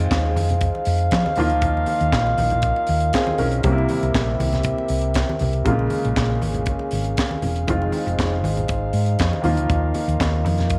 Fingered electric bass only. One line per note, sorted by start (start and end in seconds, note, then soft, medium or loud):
0.11 0.36 D#2 medium
0.36 0.68 F2 medium
0.87 1.08 F2 medium
1.12 1.23 F3 medium
1.37 1.50 D#2 medium
1.50 1.62 D2 medium
1.62 1.83 D#2 loud
2.01 2.11 D#2 medium
2.13 2.34 A#1 medium
2.38 2.71 A#1 medium
2.89 3.10 D#2 medium
3.39 3.60 B1 medium
3.64 3.85 C2 loud
4.03 4.13 C2 medium
4.15 4.36 A#1 medium
4.39 4.72 C2 medium
4.90 5.23 C2 medium
5.41 5.62 C2 medium
5.66 5.87 A#1 loud
6.05 6.15 A#1 medium
6.17 6.38 A#1 medium
6.41 6.74 G#1 medium
6.92 7.13 G#1 medium
7.44 7.64 E1 medium
7.69 7.90 F1 medium
8.07 8.16 F1 medium
8.19 8.44 F1 medium
8.44 8.65 G#1 medium
8.69 8.90 G#1 medium
8.93 9.15 G#2 medium
9.20 9.31 F2 medium
9.44 9.57 D#2 medium
9.57 9.67 D2 medium
9.70 9.91 D#2 loud
10.08 10.18 D#2 medium
10.20 10.44 D#2 medium
10.44 10.77 F2 medium